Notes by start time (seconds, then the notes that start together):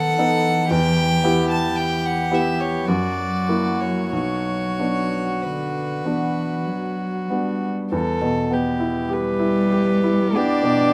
Already playing: D#3 B3 D#4 A4 F#5
0.15 E3 B3 D#4
0.19 A4
0.70 E2 G4 G5
1.24 B3 E4 G4
1.51 A5
1.76 E3 G5
2.06 F#5
2.31 B3 E4 G4 E5
2.60 C#5
2.85 F#2 F#3 F#4 D5
3.49 A#3 E4 F#4
3.80 C#5
4.12 B1 F#3 F#4 C#5
4.79 B3 D4 F#4
5.42 D3 B4
6.04 E3 B3 D4 F#4
6.66 F#3
7.28 G3 B3 D4 F#4
7.92 E2 A4
8.22 B2
8.51 B3 G4
8.80 E4
9.08 G3 G4
9.13 B4
9.39 E4
9.72 G4
10.04 E4
10.35 B3 D4 G4 D5
10.63 B2